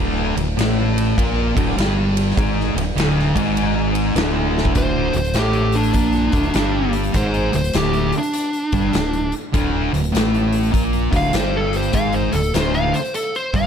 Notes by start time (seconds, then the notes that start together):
0.00 D1 D2 D3
0.36 D1 D2, ride
0.57 A1 A2 A3, snare, ride
0.98 ride
1.18 A#1 A#2 A#3, kick, ride
1.56 D1 D2 D3, kick, ride
1.77 G1 G2 G3, snare, ride
2.17 ride
2.30 snare
2.37 G#1 G#2 G#3, kick, ride
2.60 snare
2.74 D1 D2, ride
2.95 D1 D2 D3, ride
3.00 snare
3.19 snare
3.35 G#1 G#2 G#3, kick, ride
3.57 ride
3.95 ride
4.15 D1 D2 D3, snare, ride
4.58 snare
4.65 kick
4.75 D1 D2 D3 C5, kick, closed hi-hat
5.13 D1 D2 C5, closed hi-hat
5.24 closed hi-hat
5.33 A1 A2 A3, snare, closed hi-hat
5.39 G4
5.53 closed hi-hat
5.72 D4, closed hi-hat
5.83 closed hi-hat
5.93 A#1 A#2 A#3, kick, closed hi-hat
6.12 snare, closed hi-hat
6.32 D1 D2 D3, kick, closed hi-hat
6.43 closed hi-hat
6.54 G1 G2 G3, snare, closed hi-hat
6.93 closed hi-hat
7.03 closed hi-hat
7.14 G#1 G#2 G#3 C5, kick, closed hi-hat
7.34 closed hi-hat
7.53 D1 D2 C5, closed hi-hat
7.64 closed hi-hat
7.73 D1 D2 D3 G4, snare, closed hi-hat
7.93 closed hi-hat
8.12 closed hi-hat
8.18 D4
8.23 closed hi-hat
8.33 closed hi-hat
8.53 closed hi-hat
8.72 G1 G2 G3, kick, closed hi-hat
8.93 D1 D2, snare, closed hi-hat
9.13 closed hi-hat
9.32 closed hi-hat
9.53 D1 D2 D3, kick, closed hi-hat
9.93 D1 D2, closed hi-hat
10.04 closed hi-hat
10.13 A1 A2 A3, closed hi-hat
10.17 snare
10.34 closed hi-hat
10.52 closed hi-hat
10.63 closed hi-hat
10.72 A#1 A#2 A#3, kick, closed hi-hat
10.93 closed hi-hat
11.12 D1 D2 D3, kick, snare, closed hi-hat
11.17 F5
11.23 closed hi-hat
11.33 G1 G2 G3 C5, snare, closed hi-hat
11.57 A4
11.73 C5, closed hi-hat
11.82 closed hi-hat
11.93 G#1 G#2 G#3 F5, kick, closed hi-hat
12.12 C5, closed hi-hat
12.32 D1 D2 A4, closed hi-hat
12.43 closed hi-hat
12.54 D1 D2 D3 C5, snare, closed hi-hat
12.74 F5, closed hi-hat
12.94 C5, closed hi-hat
13.04 closed hi-hat
13.14 A4, closed hi-hat
13.35 C5, closed hi-hat
13.54 G1 G2 G3 F5, kick, closed hi-hat